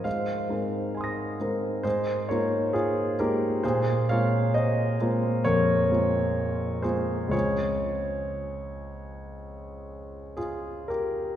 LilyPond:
<<
  \new Staff \with { instrumentName = "Grand piano" } { \time 4/4 \key aes \major \tempo 4 = 66 << { r4 <aes'' c''' ees''' bes'''>4 r2 | r1 | r1 | } \\ { <c'' f''>2 <aes' c''>8 <bes' des''>8 <f' aes'>8 <g' bes'>8 | <aes' c''>8 <des'' f''>8 <c'' ees''>4 <bes' des''>4. <aes' c''>8 | <aes' des''>2. <f' aes'>8 <g' bes'>8 | } >> }
  \new Staff \with { instrumentName = "Grand piano" } { \time 4/4 \key aes \major aes,8 <aes c' ees' bes'>4 <aes c' ees' bes'>8 aes,8 <aes bes ees' f'>4 <aes bes ees' f'>8 | bes,8 <aes bes c' f'>4 <aes bes c' f'>8 f,8 <aes bes c' f'>4 <aes bes c' f'>8 | <des, aes c' f'>1 | }
>>